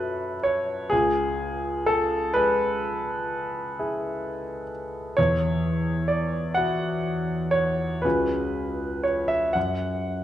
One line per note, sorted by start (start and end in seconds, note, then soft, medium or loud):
0.00 0.88 F#2 soft
0.00 0.35 F#3 soft
0.00 0.88 F#4 soft
0.00 0.89 A4 soft
0.00 0.43 B4 medium
0.00 0.94 E5 medium
0.43 0.92 C#5 medium
0.90 5.14 C#2 medium
0.90 1.87 G#4 medium
1.86 2.35 A4 medium
2.34 4.62 G#3 soft
2.34 4.71 B4 medium
3.79 5.14 E4 soft
3.79 5.14 G#4 soft
5.17 8.01 E2 soft
5.17 6.09 C#5 medium
6.08 6.55 D5 medium
6.54 8.01 E4 soft
6.54 8.01 F#4 soft
6.54 7.52 F#5 medium
7.51 8.03 C#5 medium
8.02 9.52 C#2 soft
8.02 9.52 G#3 soft
8.02 9.52 C#4 soft
8.02 9.52 F#4 soft
8.02 9.53 G#4 soft
8.02 9.04 B4 medium
9.03 9.29 C#5 medium
9.28 9.55 E5 medium
9.53 10.24 F#2 soft
9.53 10.24 F#5 medium